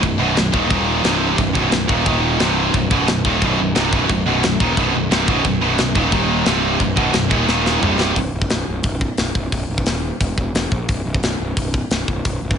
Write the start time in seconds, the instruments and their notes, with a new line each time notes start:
0.02 picked electric bass B0, distorted electric guitar B1 F#2, kick, crash
0.18 picked electric bass B0, distorted electric guitar B1 F#2 B2
0.36 picked electric bass B0, distorted electric guitar B1 F#2, snare, crash
0.52 picked electric bass D#1, distorted electric guitar D#2 A#2 D#3, kick
0.70 picked electric bass D#1, distorted electric guitar D#2 A#2 D#3, kick, crash
1.03 picked electric bass C1, distorted electric guitar C2 G2 C3, snare, crash
1.38 picked electric bass B0, distorted electric guitar B1 F#2, kick, crash
1.55 picked electric bass B0, distorted electric guitar B1 F#2 B2, kick
1.72 picked electric bass B0, distorted electric guitar B1 F#2, snare, crash
1.88 picked electric bass D#1, distorted electric guitar D#2 A#2 D#3, kick
2.06 picked electric bass D#1, distorted electric guitar D#2 A#2 D#3, kick, crash
2.40 picked electric bass C1, distorted electric guitar C2 G2 C3, snare, crash
2.74 picked electric bass B0, distorted electric guitar B1 F#2, kick, crash
2.91 picked electric bass B0, distorted electric guitar B1 F#2 B2, kick
3.08 picked electric bass B0, distorted electric guitar B1 F#2, snare, crash
3.25 picked electric bass D#1, distorted electric guitar D#2 A#2 D#3, kick
3.42 picked electric bass B0, distorted electric guitar B1 F#2 B2, kick, crash
3.60 picked electric bass B0, distorted electric guitar B1 F#2
3.75 picked electric bass C1, distorted electric guitar C2 G2 C3, snare, crash
3.92 picked electric bass B0, distorted electric guitar B1 F#2 B2, kick
4.09 picked electric bass B0, distorted electric guitar B1 F#2, kick, crash
4.26 picked electric bass B0, distorted electric guitar B1 F#2 B2
4.43 picked electric bass B0, distorted electric guitar B1 F#2, snare, crash
4.60 picked electric bass D#1, distorted electric guitar D#2 A#2 D#3, kick
4.77 picked electric bass B0, distorted electric guitar B1 F#2 B2, kick, crash
4.94 picked electric bass B0, distorted electric guitar B1 F#2
5.11 picked electric bass C1, distorted electric guitar C2 G2 C3, snare, crash
5.28 picked electric bass B0, distorted electric guitar B1 F#2 B2, kick
5.45 picked electric bass B0, distorted electric guitar B1 F#2, kick, crash
5.61 picked electric bass B0, distorted electric guitar B1 F#2 B2
5.78 picked electric bass B0, distorted electric guitar B1 F#2, snare, crash
5.95 picked electric bass D#1, distorted electric guitar D#2 A#2 D#3, kick
6.12 picked electric bass D#1, distorted electric guitar D#2 A#2 D#3, kick, crash
6.46 picked electric bass C1, distorted electric guitar C2 G2 C3, snare, crash
6.80 picked electric bass B0, distorted electric guitar B1 F#2, kick, crash
6.97 picked electric bass B0, distorted electric guitar B1 F#2 B2, kick
7.13 picked electric bass B0, distorted electric guitar B1 F#2, snare, crash
7.30 picked electric bass D#1, distorted electric guitar D#2 A#2 D#3, kick
7.47 picked electric bass D#1, distorted electric guitar D#2 A#2 D#3, snare
7.66 snare
7.81 picked electric bass C1, distorted electric guitar C2 G2 C3, mid tom
8.00 snare
8.16 picked electric bass B0, kick, open hi-hat
8.34 picked electric bass B0
8.42 kick
8.50 picked electric bass B0, snare, open hi-hat
8.68 picked electric bass B0
8.83 picked electric bass B0, kick, open hi-hat
9.01 kick
9.18 picked electric bass B0, snare, open hi-hat
9.35 picked electric bass B0, kick
9.52 picked electric bass B0, kick, open hi-hat
9.69 picked electric bass B0
9.78 kick
9.86 picked electric bass D#1, snare, open hi-hat
10.21 picked electric bass E1, kick, open hi-hat
10.37 picked electric bass E1, kick
10.54 picked electric bass E1, snare, open hi-hat
10.72 picked electric bass A#1, kick
10.89 picked electric bass B0, kick, open hi-hat
11.05 picked electric bass B0
11.14 kick
11.22 picked electric bass B0, snare, open hi-hat
11.40 picked electric bass B0
11.57 picked electric bass B0, kick, open hi-hat
11.74 kick
11.91 picked electric bass B0, snare, open hi-hat
12.08 picked electric bass B0, kick
12.25 picked electric bass B0, kick, open hi-hat
12.43 picked electric bass B0
12.51 kick